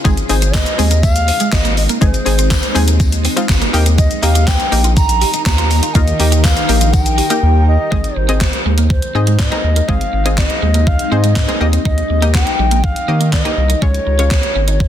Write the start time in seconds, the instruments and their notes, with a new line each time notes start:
0.04 analog synth bass G#1, ambient pad G#3 C4 D#4, clean electric guitar G#3, synth pluck C4 D#4 G#4, kick, tambourine, shaker
0.17 closed hi-hat, shaker
0.29 analog synth bass G#1, synth pluck C4 D#4 G#4, bansuri C5, muted clean electric guitar stroke, open hi-hat, tambourine, shaker
0.42 clean electric guitar C4, closed hi-hat, shaker
0.54 bansuri D#5, muted clean electric guitar stroke, kick, snare, clap, tambourine, shaker
0.66 closed hi-hat, shaker
0.78 analog synth bass D#2, clean electric guitar G#3, synth pluck C4 D#4 G#4, open hi-hat, tambourine, shaker
0.91 clean electric guitar A#3, closed hi-hat, shaker
1.03 bansuri F5, muted clean electric guitar stroke, kick, tambourine, shaker
1.16 closed hi-hat, shaker
1.28 clean electric guitar C4, open hi-hat, tambourine, shaker
1.40 clean electric guitar G#3, closed hi-hat, shaker
1.52 analog synth bass G#1, bansuri D#5, kick, snare, clap, tambourine, shaker
1.65 clean electric guitar A#3, closed hi-hat, shaker
1.77 bansuri D#5, muted clean electric guitar stroke, open hi-hat, tambourine, shaker
1.89 clean electric guitar A#3, closed hi-hat, shaker
2.01 analog synth bass G#1, clean electric guitar G#3, synth pluck C4 D#4 G#4, bansuri C5, kick, shaker
2.14 closed hi-hat, shaker
2.25 analog synth bass G#1, synth pluck C4 D#4 G#4, muted clean electric guitar stroke, open hi-hat, tambourine, shaker
2.39 clean electric guitar C4, closed hi-hat, shaker
2.51 muted clean electric guitar stroke, kick, snare, clap, tambourine, shaker
2.63 closed hi-hat, shaker
2.75 analog synth bass D#2, clean electric guitar G#3, synth pluck C4 D#4 G#4, open hi-hat, tambourine, shaker
2.88 clean electric guitar A#3, closed hi-hat, shaker
3.00 muted clean electric guitar stroke, kick, tambourine, shaker
3.12 closed hi-hat, shaker
3.25 clean electric guitar C4, open hi-hat, tambourine, shaker
3.36 clean electric guitar G#3, synth pluck C4 D#4 F4, closed hi-hat, shaker
3.49 analog synth bass G#1, kick, snare, clap, tambourine, shaker
3.62 clean electric guitar A#3, closed hi-hat, shaker
3.73 analog synth bass D#2, ambient pad D#3 G4 A#4, synth pluck A#3 D#4 G4, muted clean electric guitar stroke, open hi-hat, tambourine, shaker
3.86 clean electric guitar C4, closed hi-hat, shaker
3.98 clean electric guitar D#4, bansuri D#5, kick, tambourine, shaker
4.11 closed hi-hat, shaker
4.23 analog synth bass D#2, synth pluck A#3 D#4 G4, bansuri F5, muted clean electric guitar stroke, open hi-hat, tambourine, shaker
4.35 clean electric guitar G4, closed hi-hat, shaker
4.47 bansuri G5, muted clean electric guitar stroke, kick, snare, clap, tambourine, shaker
4.60 closed hi-hat, shaker
4.72 analog synth bass A#1, synth pluck A#3 D#4 G4, clean electric guitar D#4, open hi-hat, tambourine, shaker
4.84 clean electric guitar F4, closed hi-hat, shaker
4.96 bansuri A#5, muted clean electric guitar stroke, kick, tambourine, shaker
5.09 closed hi-hat, shaker
5.22 clean electric guitar G4, open hi-hat, tambourine, shaker
5.34 clean electric guitar D#4, closed hi-hat, shaker
5.45 analog synth bass D#2, bansuri A#5, kick, snare, clap, tambourine, shaker
5.58 clean electric guitar F4, closed hi-hat, shaker
5.71 muted clean electric guitar stroke, open hi-hat, tambourine, shaker
5.83 clean electric guitar F4, closed hi-hat, shaker
5.95 analog synth bass D#2, synth pluck A#3 D#4 F4, clean electric guitar D#4, bansuri D#5, kick, shaker
6.08 closed hi-hat, shaker
6.19 analog synth bass D#2, synth pluck A#3 D#4 G4, muted clean electric guitar stroke, open hi-hat, tambourine, shaker
6.32 clean electric guitar G4, closed hi-hat, shaker
6.44 bansuri F5, muted clean electric guitar stroke, kick, snare, clap, tambourine, shaker
6.57 closed hi-hat, shaker
6.69 analog synth bass A#1, synth pluck A#3 D#4 G4, clean electric guitar D#4, open hi-hat, tambourine, shaker
6.81 clean electric guitar F4, closed hi-hat, shaker
6.93 bansuri G5, muted clean electric guitar stroke, kick, tambourine, shaker
7.06 closed hi-hat, shaker
7.18 clean electric guitar G4, open hi-hat, tambourine, shaker
7.30 synth pluck A#3 D#4 G4, clean electric guitar D#4, closed hi-hat, shaker
7.43 analog synth bass D#2
7.68 bansuri D#5
7.91 analog synth bass G#1, ambient pad G#3 C4 D#4, clean electric guitar G#3, synth pluck C4 D#4 G#4 D#5, kick
8.04 closed hi-hat
8.16 analog synth bass G#1, bansuri C5, muted clean electric guitar stroke
8.29 clean electric guitar C4, synth pluck C4 D#4 G#4 D#5, closed hi-hat
8.41 muted clean electric guitar stroke, kick, snare, clap
8.53 closed hi-hat
8.66 analog synth bass D#2, clean electric guitar G#3
8.78 clean electric guitar A#3, closed hi-hat
8.90 bansuri C5, muted clean electric guitar stroke, kick
9.02 closed hi-hat
9.15 analog synth bass G#2, synth pluck C4 D#4 G#4 D#5, clean electric guitar C4
9.27 clean electric guitar G#3, closed hi-hat
9.39 bansuri D#5, kick, snare, clap
9.52 clean electric guitar A#3, synth pluck C4 D#4 G#4 A#4, closed hi-hat
9.64 analog synth bass D#2, muted clean electric guitar stroke
9.76 clean electric guitar A#3, closed hi-hat
9.88 analog synth bass G#1, clean electric guitar G#3, synth pluck C4 D#4 G#4 D#5, bansuri F5, kick
10.01 closed hi-hat
10.13 analog synth bass G#1, muted clean electric guitar stroke
10.25 synth pluck C4 D#4 G#4 D#5, clean electric guitar C4, closed hi-hat
10.38 bansuri D#5, muted clean electric guitar stroke, kick, snare, clap
10.50 closed hi-hat
10.62 analog synth bass D#2, clean electric guitar G#3
10.74 clean electric guitar A#3, closed hi-hat
10.87 bansuri F5, muted clean electric guitar stroke, kick
10.99 closed hi-hat
11.11 analog synth bass G#2, synth pluck C4 D#4 G#4 C5, clean electric guitar C4, bansuri D#5
11.24 clean electric guitar G#3, closed hi-hat
11.36 kick, snare, clap
11.48 clean electric guitar A#3, synth pluck C4 D#4 G#4 D#5, closed hi-hat
11.60 analog synth bass D#2, ambient pad D#3 G4 A#4, synth pluck A#3 D#4 G4 D#5, bansuri D#5, muted clean electric guitar stroke
11.73 clean electric guitar C4, closed hi-hat
11.85 analog synth bass D#2, clean electric guitar D#4, bansuri D#5, kick
11.98 closed hi-hat
12.10 analog synth bass D#2, muted clean electric guitar stroke
12.22 synth pluck A#3 D#4 G4 D#5, clean electric guitar G4, closed hi-hat
12.35 bansuri G5, muted clean electric guitar stroke, kick, snare, clap
12.47 closed hi-hat
12.59 analog synth bass A#1, clean electric guitar G3
12.71 clean electric guitar A#3, closed hi-hat
12.84 bansuri F5, muted clean electric guitar stroke, kick
12.96 closed hi-hat
13.08 analog synth bass D#3, synth pluck A#3 D#4 G4 D#5, clean electric guitar C4
13.20 clean electric guitar A#3, closed hi-hat
13.33 bansuri D#5, kick, snare, clap
13.45 synth pluck A#3 D#4 G4 D#5, clean electric guitar D#4, closed hi-hat
13.57 analog synth bass C2, muted clean electric guitar stroke
13.70 clean electric guitar D#4, closed hi-hat
13.82 analog synth bass C#2, ambient pad C#3 C#4 F4 G#4, synth pluck G#3 C#4 F4 C#5, clean electric guitar C#4, bansuri C#5, kick
13.94 closed hi-hat
14.07 analog synth bass C#2, muted clean electric guitar stroke
14.19 synth pluck G#3 C#4 F4 C#5, clean electric guitar F4, closed hi-hat
14.31 kick, snare, clap
14.43 closed hi-hat
14.56 analog synth bass G#1, clean electric guitar C#4
14.68 clean electric guitar D#4, closed hi-hat
14.80 muted clean electric guitar stroke, kick